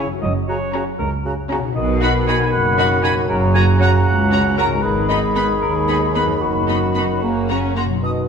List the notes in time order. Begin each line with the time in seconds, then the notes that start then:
Already playing: C#3 E4 G#4 G#5
0.00 C#4 E4
0.05 F#2
0.10 C#4
0.14 F#4
0.18 A#4 D#5
0.23 F#1 F#2
0.48 C#3 F#4 C#5 A#5
0.74 C#3 C#4 F#4 C#5 A#5
0.99 C#2 A#4
1.25 C#3 F#4 A#5
1.51 C#3 C#4 F#4 A#5
1.59 B2
1.63 D#4
1.68 F#4
1.72 B4 D#5
1.76 B1 B2 D#3 F#4 B5
2.02 D#4 F#4 F#5 B5
2.27 D#4 F#4 G#5 B5
2.45 G#5
2.52 F#1 F#2 F#5
2.78 D#4 F#4 B5
3.03 D#4 F#4 G#5 B5
3.10 F#2
3.15 C#4
3.20 F#4
3.24 A#4
3.29 F#1 F#2 C#3 A#4 A#5
3.54 C#4 F#4 G#5 A#5
3.80 C#4 F#4 F#5 A#5
4.05 C#2 F#5
4.32 C#4 F#4 A#5
4.57 C#4 F#4 A#4 A#5
4.65 G#2
4.70 B3
4.74 D#4
4.78 B4
4.83 G#1 G#2 D#3 G#4 B5
5.08 B3 D#4 D#5 B5
5.35 B3 D#4 B4 B5
5.62 D#2 A#4
5.88 B3 D#4 G#4 B5
6.15 B3 D#4 B4 B5
6.23 F#2
6.27 B3
6.32 D#4
6.37 B4
6.41 F#1 F#2 F#4
6.68 B3 D#4 B5
6.95 B3 D#4 B5
7.04 F#2
7.08 A#3
7.13 C#4
7.17 C#5
7.22 F#1 F#2 C#3 A#3 A#5
7.49 C#4 F#4 A#5
7.76 A#3 F#4 A#5 C6
7.84 B2
7.89 F#3
7.93 D#4
7.98 B4
8.02 B2 F#4 D#5 D#6